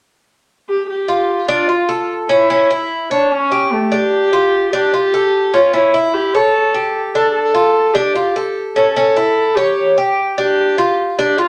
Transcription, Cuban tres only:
1.08 F4
1.48 D4
1.69 F4
1.89 A4
2.29 C#4
2.50 C#4
2.71 E4
3.11 C#5
3.52 G4
3.92 D4
4.33 F4
4.73 D4
4.94 F4
5.14 A4
5.54 C#4
5.73 C#4
5.94 E4
6.35 C#5
6.74 G4
7.15 D4
7.55 F4
7.95 D4
8.15 F4
8.36 A4
8.76 C#4
8.96 C#4
9.16 E4
9.57 C#5
9.98 G4
10.38 D4
10.78 F4
11.19 D4
11.38 F4

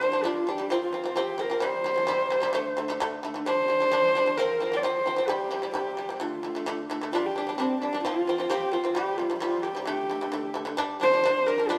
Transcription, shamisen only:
0.01 G3 D4
0.12 G3 D4
0.24 G3 D4
0.47 G3 D4
0.58 G3 D4
0.70 F3 C4
0.93 F3 C4
1.04 F3 C4
1.16 F3 C4
1.38 F3 C4
1.50 F3 C4
1.60 C3 G3
1.84 C3 G3
1.96 C3 G3
2.07 C3 G3
2.30 C3 G3
2.42 C3 G3
2.53 D3 A3
2.77 D3 A3
2.88 D3 A3
3.00 D3 A3
3.23 D3 A3
3.34 D3 A3
3.46 G3 D4
3.68 G3 D4
3.80 G3 D4
3.92 G3 D4
4.15 G3 D4
4.26 G3 D4
4.38 F3 C4
4.60 F3 C4
4.72 F3 C4
4.83 F3 C4
5.06 F3 C4
5.16 F3 C4
5.28 C3 G3
5.51 C3 G3
5.62 C3 G3
5.74 C3 G3
5.97 C3 G3
6.09 C3 G3
6.20 D3 A3
6.43 D3 A3
6.55 D3 A3
6.66 D3 A3
6.90 D3 A3
7.01 D3 A3
7.13 G3 D4
7.36 G3 D4
7.47 G3 D4
7.58 G3 D4
7.82 G3 D4
7.93 G3 D4
8.05 F3 C4
8.27 F3 C4
8.38 F3 C4
8.50 F3 C4
8.72 F3 C4
8.84 F3 C4
8.95 C3 G3
9.18 C3 G3
9.30 C3 G3
9.40 C3 G3
9.63 C3 G3
9.75 C3 G3
9.85 D3 A3
10.10 D3 A3
10.21 D3 A3
10.32 D3 A3
10.54 D3 A3
10.65 D3 A3
10.77 G3 D4
11.00 G3 D4
11.12 G3 D4
11.24 G3 D4
11.46 G3 D4
11.58 G3 D4
11.69 G3 D4

